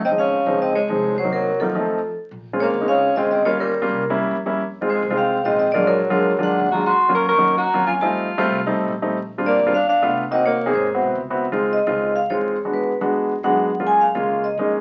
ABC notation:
X:1
M:4/4
L:1/16
Q:1/4=210
K:Db
V:1 name="Vibraphone"
e2 f6 e2 d6 | c2 B4 =A8 z2 | [K:Bbm] z4 d4 f4 e2 e2 | d2 B8 z6 |
z4 c4 f4 e2 e2 | =d2 B8 g4 b2 | c'4 d'2 d'4 b4 a2 | =a12 z4 |
z4 =d4 f2 f4 z2 | e2 d4 c6 z4 | [K:Db] z4 e6 f2 d4- | d2 =B4 z6 ^f4- |
^f2 a2 =f6 e4 z2 |]
V:2 name="Grand piano"
z [F,A,CE]3 z2 [F,A,CE]4 z2 [F,A,CE]4 | z [G,B,CE]3 z2 [G,B,CE]2 [F,=A,CE]3 z4 z | [K:Bbm] z3 [A,CDF]3 z [A,CDE]3 z2 [A,CDF]3 z | [=G,B,DF]4 z [G,B,DF]3 z [G,B,D=E]3 z2 [G,B,DE]2 |
z3 [A,CEF]3 z [A,CEF]3 z2 [A,CEF]3 z | [G,A,=DF]4 z [G,A,DF]3 z [G,A,DF]3 z2 [G,A,DF]2 | z3 [G,B,DF]3 z [G,B,DE]3 z2 [G,B,DF]3 z | [=G,=A,CE]4 z [G,A,CF]3 z [G,A,CE]3 z2 [G,A,CE]2 |
z3 [=G,C=DF]3 z [G,CDF] z4 [=A,=B,DF]3 z | [B,CEG]4 z [B,CEA]3 z [=B,C=EG]3 z2 [B,CEG]2 | [K:Db] z [A,CEF]3 z2 [A,CEF]4 z2 [A,CEF]4 | z [^G,=B,=D^F]3 z2 [G,B,DF]4 z2 [G,B,DF]4 |
z [A,B,DF]3 z2 [A,B,DF]4 z2 [A,B,DE]4 |]
V:3 name="Tenor saxophone"
C2 D6 C2 A,6 | G,2 G,4 F,8 z2 | [K:Bbm] z4 B,4 D4 C2 C2 | B,2 =G,8 z6 |
z4 A,4 C4 C2 C2 | B,2 G,8 =D4 G2 | G4 B2 B4 G4 F2 | F12 z4 |
z4 B,4 =D2 D4 z2 | C2 B,4 A,6 z4 | [K:Db] z16 | z16 |
z16 |]
V:4 name="Upright bass" clef=bass
D,,6 D,,6 C,,4- | C,,6 F,,6 z4 | [K:Bbm] B,,,6 D,,6 =G,,,4- | =G,,,6 C,,4 =E,,2 F,,4- |
F,,6 C,,6 B,,,4- | B,,,6 F,,4 F,,2 E,,4- | E,,6 E,,6 F,,4- | F,,6 C,,4 C,,2 B,,,4- |
B,,,6 =G,,,6 C,,4- | C,,6 A,,,4 =B,,,2 D,,4- | [K:Db] D,,6 D,,6 _F,,4- | _F,,6 =E,,6 ^F,,4- |
^F,,6 D,,6 =F,,4 |]